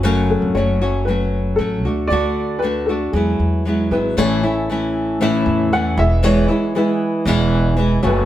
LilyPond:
<<
  \new Staff \with { instrumentName = "Upright piano" } { \time 4/4 \key a \major \tempo 4 = 116 r8 a'8 cis''4 b'4 a'4 | d''4 b'8 a'8 gis'4. b'8 | cis''2 e''4 fis''8 e''8 | cis''4 b'4 r4. b'8 | }
  \new Staff \with { instrumentName = "Tonewheel organ" } { \time 4/4 \key a \major r1 | r1 | <a cis' a'>2.~ <a cis' a'>8 <gis b gis'>8~ | <gis b gis'>2.~ <gis b gis'>8 <a cis' a'>8 | }
  \new Staff \with { instrumentName = "Tonewheel organ" } { \clef bass \time 4/4 \key a \major r1 | r1 | e1~ | e2.~ e8 fis8 | }
  \new Staff \with { instrumentName = "Nylon-string guitar" } { \time 4/4 \key a \major <fis, cis fis a cis' fis'>4 <fis a cis' fis'>8 <fis a cis' fis'>8 <fis a cis' fis'>4 <fis a cis' fis'>8 <a d' fis'>8 | <d a d' fis'>4 <d a d' fis'>8 <a d' fis'>8 <fis gis b e'>4 <fis gis b e'>8 <fis gis b e'>8 | <a, e a cis' e'>8 <a cis' e'>8 <e a cis' e'>4 <a, e a cis' e'>4 <e a cis' e'>8 <e gis b e'>8 | <e, b, e gis b e'>8 <e gis b e'>8 <e gis b e'>4 <e, b, e gis b e'>4 <e gis b e'>8 <fis, cis fis a cis' fis'>8 | }
  \new Staff \with { instrumentName = "Upright bass" } { \clef bass \time 4/4 \key a \major fis,,8. gis,,16 fis,,2 a,,8 d,8 | d,2 e,8 e,4 gis,,8 | a,,2~ a,,8 e,4 e,,8~ | e,,8 r4. e,,4. fis,,8 | }
>>